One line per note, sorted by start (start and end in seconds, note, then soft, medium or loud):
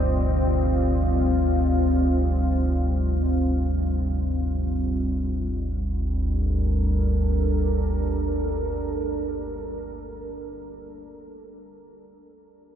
0.00 5.20 G1 medium
0.00 5.20 D2 medium
0.00 5.22 G3 medium
0.00 5.23 C4 medium
0.00 5.23 F4 medium
0.00 5.22 D5 medium
0.00 5.23 D#5 medium
5.21 9.99 G1 medium
5.21 9.99 D2 medium
5.21 10.01 G3 medium
5.41 10.19 D4 medium
5.59 10.37 A4 medium
5.76 10.54 A#4 medium